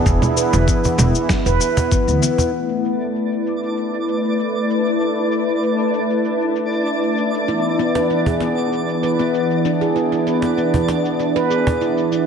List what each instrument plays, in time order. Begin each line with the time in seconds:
Already playing: analog synth pad E3 B3 E4
0.06 upright bass E1, handpan E4, kick, cabasa
0.22 handpan E4, low conga, cabasa
0.37 handpan B4, cabasa
0.53 upright bass E1, cajon slap, cabasa
0.68 handpan B3, kick, cabasa
0.84 cajon bass, cabasa
0.98 upright bass E1, cajon slap, low conga, cabasa
1.15 cabasa
1.29 handpan E4, kick, snare, cabasa
1.46 upright bass E1, handpan B4, cabasa
1.61 handpan B4, cabasa
1.77 cajon bass, cabasa
1.92 handpan B3, kick, cabasa
2.08 upright bass D2, cabasa
2.22 handpan B3, cajon slap, cabasa
2.38 cajon bass, cabasa
2.53 analog synth pad A3 E4 B4, synth texture D4 D5, cabasa
2.85 cabasa
3.01 cabasa
3.16 cabasa
3.32 cabasa
3.46 cabasa
3.63 cabasa
3.77 cabasa
3.94 cabasa
4.08 cabasa
4.25 cabasa
4.39 cabasa
4.55 cabasa
4.70 cabasa
4.86 cabasa
5.01 cabasa
5.32 cabasa
5.48 cabasa
5.63 cabasa
5.79 cabasa
5.94 cabasa
6.10 cabasa
6.25 cabasa
6.41 cabasa
6.56 cabasa
6.72 cabasa
6.86 cabasa
7.03 cabasa
7.18 cabasa
7.34 cabasa
7.48 analog synth pad E3 B3, handpan E4, cabasa
7.79 handpan B3, cabasa
7.95 handpan B4, cajon slap, cabasa
8.10 handpan E4, cabasa
8.26 handpan G#4, cajon bass, cabasa
8.40 handpan B3, cajon slap, cabasa
8.58 cabasa
8.73 cabasa
8.89 cabasa
9.03 handpan B4, cabasa
9.19 handpan B3, cabasa
9.34 cabasa
9.51 cabasa
9.65 handpan D4, cabasa
9.81 handpan G#4, cabasa
9.96 analog synth pad D4, handpan E4, cabasa
10.12 handpan E4, cabasa
10.27 handpan B4, cabasa
10.42 cajon slap, cabasa
10.58 handpan B3, cabasa
10.74 cajon bass, cabasa
10.88 cajon slap, cabasa
11.05 cabasa
11.20 handpan E4, cabasa
11.36 handpan B4, cabasa
11.50 handpan G#4, cabasa
11.67 cajon bass, cabasa
11.81 handpan E4, cabasa
11.98 cabasa
12.12 handpan E4, cabasa